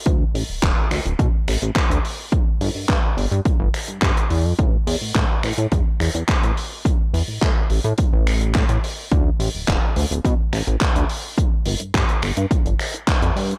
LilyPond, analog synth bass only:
\new Staff \with { instrumentName = "Analog synth bass" } { \clef bass \time 4/4 \key d \dorian \tempo 4 = 106 d,16 r16 a,,16 d,,16 d,,16 r16 d,16 d,,16 b,16 r16 a,,16 a,,16 r16 d,16 r8 | r8 g,,16 g,16 g,16 r16 g,,16 g,16 r16 g,,16 r16 g,16 g,16 r16 e,16 f,16 | a,,16 r16 e,16 a,16 a,16 r16 a,,16 a,16 e,16 r16 e,16 e,16 r16 a,,16 r8 | r8 e,16 a,16 a,16 r16 a,,16 a,16 r16 a,,8. a,16 a,16 r8 |
d,16 r16 a,,16 d,,16 d,,16 r16 d,16 d,,16 b,16 r16 a,,16 a,,16 r16 d,16 r8 | r8 g,,16 g,16 g,16 r16 g,,16 g,16 r16 g,,16 r8. f,16 g,16 r16 | }